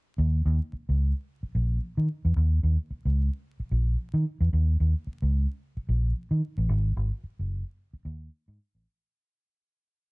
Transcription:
0.18 D#2
0.46 D#2
0.73 muted fingered electric bass stroke
0.89 C#2
1.43 muted fingered electric bass stroke
1.55 A#1
1.97 D#3
2.25 E2
2.36 D#2
2.63 D#2
2.91 muted fingered electric bass stroke
3.05 C#2
3.60 muted fingered electric bass stroke
3.71 A#1
4.14 D#3
4.41 E2
4.53 D#2
4.80 D#2
5.07 muted fingered electric bass stroke
5.22 C#2
5.77 muted fingered electric bass stroke
5.89 A#1
6.31 D#3
6.58 A1
6.69 G#1
6.97 G#1
7.24 muted fingered electric bass stroke
7.39 F#1
7.93 muted fingered electric bass stroke
8.05 D#2
8.48 G#2
8.75 A1

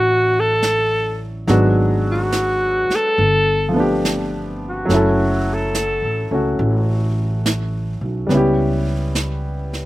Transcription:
Already playing: A1 F#3 A3 C#4 D4 E4 F#4
0.40 A4
0.63 snare, hi-hat pedal
1.47 G#1 F#3 G#3 B3 D4 F#4, brush sweep, snare
2.11 F#4
2.32 snare, hi-hat pedal
2.89 muted upright bass stroke, snare
2.95 A4
3.18 G1, brush sweep
3.69 F3 A3
3.74 B3 D4
3.80 G4
4.05 snare, hi-hat pedal
4.69 F#4
4.85 F#1 F#3 A3
4.90 C#4 E4, brush sweep, snare
4.96 A4
5.53 A4
5.75 snare, hi-hat pedal
6.02 A1
6.31 C#2 A3 C#4 F#4
6.59 A1, brush sweep
7.46 snare, hi-hat pedal
8.01 B1
8.27 C#2 G3 B3, brush sweep, snare
8.31 C#4 E4
8.37 G4
9.15 snare, hi-hat pedal
9.73 snare

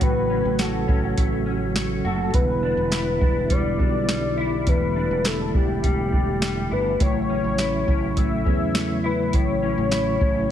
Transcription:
Already playing: C#3 F#3 A3 C#4 F#4
0.01 A1 A2 F#4 B4, kick, closed hi-hat
0.30 C#4
0.45 A1
0.59 F#4 A4, snare, closed hi-hat
0.88 A1 C#4, kick
1.17 A1 A3, kick, closed hi-hat
1.46 C#4
1.76 A3, snare, closed hi-hat
2.05 F#1 F#4 A4
2.34 E1 E2 D3 G3 B3 E4 B4, kick, closed hi-hat
2.63 D4
2.77 E1
2.92 E4, snare, closed hi-hat
3.21 E1 D4, kick
3.50 G3 D5, kick, closed hi-hat
3.79 B1 D4, kick
4.09 G3, snare, closed hi-hat
4.38 E4
4.67 E1 E2 A3 B4, kick, closed hi-hat
4.96 D4
5.11 E1
5.25 E4 A4, snare, closed hi-hat
5.54 E1 D4 G4, kick
5.83 E1 G3, kick, closed hi-hat
6.12 D4, kick
6.42 G3, snare, closed hi-hat
6.71 G1 E4 B4
7.00 A1 A2 C#3 F#3 E4 C#5, kick, closed hi-hat
7.29 C#4
7.44 A1
7.58 E4, snare, closed hi-hat
7.87 A1 C#4, kick
8.16 A3 E5, kick, closed hi-hat
8.45 E2 C#4, kick
8.75 A3, snare, closed hi-hat
9.04 E4 B4
9.33 A1 A2 C#5, kick, closed hi-hat
9.62 C#4
9.78 A1
9.91 E4, snare, closed hi-hat
10.21 A1 C#4, kick

